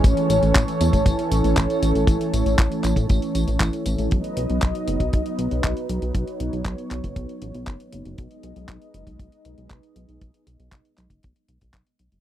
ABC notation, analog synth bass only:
X:1
M:4/4
L:1/16
Q:1/4=118
K:Alyd
V:1 name="Analog synth bass" clef=bass
A,,, z A,,, A,,, A,,, z E,, A,,, A,,, z A,,, A,,, A,,, z A,,, A,,, | A,,, z A,,, A,,, A,,, z A,,, A,, A,,, z A,,, A,,, A,,, z A,,, A,,, | B,,, z B,,, B,,, B,,, z F,,, B,,, B,,, z B,,, B,,, B,,, z B,,, B,,, | B,,, z B,,, B,,, B,,, z B,,, F,,, B,,, z A,,, B,,, F,,, z F,,, F,,, |
B,,, z B,,, B,,, B,,, z F,,, B,,, B,,, z B,,, B,,, B,,, z B,,, B,,, | B,,, z B,,, B,,, B,,, z B,,, F,,, B,,, z B,,, B,,, B,,, z B,,, F,,, |]